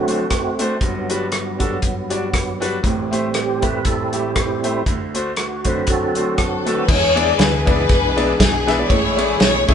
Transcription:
Already playing: grand piano D2 D3, tonewheel organ D3 F#3 A3 C4 F#4
0.07 grand piano A3 D4 F#4 C5, closed hi-hat
0.30 kick, cross-stick, closed hi-hat
0.59 grand piano A3 D4 F#4 C5, cross-stick, closed hi-hat
0.80 grand piano G1 G2, tonewheel organ G2 F#3 B3, kick, closed hi-hat
1.09 grand piano G3 D4 F#4 B4, closed hi-hat
1.32 cross-stick, closed hi-hat
1.59 grand piano G3 D4 F#4 A4, kick, closed hi-hat
1.82 kick, closed hi-hat
2.09 grand piano G3 D4 F#4 D5, closed hi-hat
2.34 kick, cross-stick, closed hi-hat
2.60 grand piano G3 D4 F#4 B4, cross-stick, closed hi-hat
2.83 grand piano A1 A2, tonewheel organ A2 G3 C4, kick, closed hi-hat
3.11 grand piano A3 E4 G4 C5, closed hi-hat
3.34 tonewheel organ G4, cross-stick, closed hi-hat
3.62 grand piano A3 E4 G4 A4, tonewheel organ B4, kick, closed hi-hat
3.85 tonewheel organ C4 E4 A4, kick, cross-stick, closed hi-hat
4.13 grand piano A3 E4 G4 A4, tonewheel organ C4 E4 G4, closed hi-hat
4.36 kick, cross-stick, closed hi-hat
4.63 grand piano A3 E4 G4 C5, closed hi-hat
4.86 grand piano D2 D3, kick, closed hi-hat
5.14 grand piano A3 D4 F#4 C5, closed hi-hat
5.37 tonewheel organ F#4, cross-stick, closed hi-hat
5.65 tonewheel organ D3 F#3 C4 B4, grand piano A3 D4 F#4 C5, kick, closed hi-hat
5.87 tonewheel organ C4 F#4 A4, kick, cross-stick, closed hi-hat
6.15 grand piano A3 D4 F#4 C5, closed hi-hat
6.38 string section A4, kick, cross-stick, closed hi-hat
6.66 grand piano A3 D4 F#4 A4, string section B4, cross-stick, closed hi-hat
6.88 fingered electric bass E2, tonewheel organ E3 G#3 B3 D4 G#4, grand piano E3, string section G#4 C#5, kick, crash
7.15 grand piano B3 D4 E4 G#4 D5, string section D5, ride
7.39 fingered electric bass D2, string section B4, snare, ride
7.66 fingered electric bass C#2, grand piano B3 D4 E4 G#4 D5, string section D4 G#4 B4, kick, ride
7.89 fingered electric bass B1, kick, snare, ride
8.16 grand piano B3 D4 E4 G#4 D5, ride
8.40 fingered electric bass B1, string section G#4, kick, snare, ride
8.67 grand piano B3 D4 E4 G#4 E5, string section B4, snare, ride
8.78 grand piano B3 D4 E4 G#4 D5
8.89 fingered electric bass A1, grand piano A2, tonewheel organ E3 A3 C#4 G#4, string section E4 G#4 C#5, kick, ride
9.17 grand piano A3 C#4 E4 G#4 C#5, string section D5, ride
9.40 fingered electric bass B1, string section C#5, snare, ride
9.68 fingered electric bass C#2, grand piano A3 C#4 E4 G#4 C#5, string section E4 G#4 C#5, kick, ride

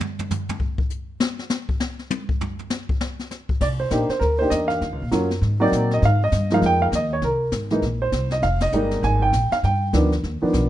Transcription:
0.00 floor tom
0.19 floor tom
0.31 floor tom, hi-hat pedal
0.49 floor tom
0.60 kick
0.78 kick
0.90 hi-hat pedal
1.20 snare
1.39 snare
1.50 snare, hi-hat pedal
1.69 kick
1.80 snare
1.99 snare
2.10 hi-hat pedal, high tom
2.29 kick
2.41 floor tom
2.59 floor tom
2.70 snare, hi-hat pedal
2.89 kick
3.01 snare
3.19 snare
3.31 snare, hi-hat pedal
3.49 kick
3.61 upright bass C2, grand piano D5, brush sweep, kick, snare, crash
3.80 grand piano C5
3.91 upright bass A#1, grand piano A#3 D4 D#4 G4, kick, snare, hi-hat pedal
4.09 grand piano C5, muted upright bass stroke, snare
4.20 upright bass D2, grand piano A#4, brush sweep, kick, snare
4.39 grand piano A#3 D4 D#4 G4 C5
4.50 upright bass E2, grand piano D#5, kick, snare, hi-hat pedal
4.68 grand piano F5, snare
4.81 upright bass D#2, brush sweep, kick, snare
4.92 upright bass C#2
5.02 upright bass A#1
5.11 upright bass F#2, grand piano F#3 A#3 C#4 F4, kick, snare, hi-hat pedal
5.31 snare
5.41 upright bass G#2, brush sweep, snare
5.60 grand piano F#3 A#3 C4 D#4 D5
5.72 upright bass A#2, kick, snare, hi-hat pedal
5.91 grand piano D#5, snare
6.02 upright bass G#2, grand piano F5, brush sweep, snare
6.24 grand piano D#5
6.32 upright bass G2, kick, snare, hi-hat pedal
6.50 grand piano F3 G#3 A#3 D#4, snare
6.54 grand piano F5
6.62 upright bass F2, brush sweep, kick, snare
6.66 grand piano G5
6.82 grand piano F5
6.92 upright bass D#2, grand piano D#5, kick, snare, hi-hat pedal
7.13 grand piano C#5
7.22 upright bass C2, grand piano A#4, brush sweep, kick, snare
7.52 upright bass G#1, kick, snare, hi-hat pedal
7.70 grand piano E3 G#3 A#3 D#4, snare
7.82 upright bass A#1, brush sweep, kick, snare
8.02 grand piano C5
8.12 upright bass C2, kick, snare, hi-hat pedal
8.30 grand piano D#5, snare
8.42 upright bass F1, grand piano F5, brush sweep, kick, snare
8.60 grand piano D#5, snare, ride
8.72 upright bass G1, grand piano G3 G#3 A#3 D#4, hi-hat pedal
8.91 snare
9.03 upright bass G#1, grand piano G#5, brush sweep, kick, snare
9.22 grand piano G5
9.33 upright bass A#1, kick, snare, hi-hat pedal
9.51 grand piano F5, muted upright bass stroke, snare
9.63 upright bass G2, grand piano G5, brush sweep, kick, snare
9.93 upright bass D2, grand piano D#3 F3 B3 D4, snare, hi-hat pedal
10.12 snare
10.23 upright bass D#2, brush sweep, kick, snare
10.42 grand piano D#3 F3 B3 D4, muted upright bass stroke
10.53 upright bass B1, kick, snare, hi-hat pedal

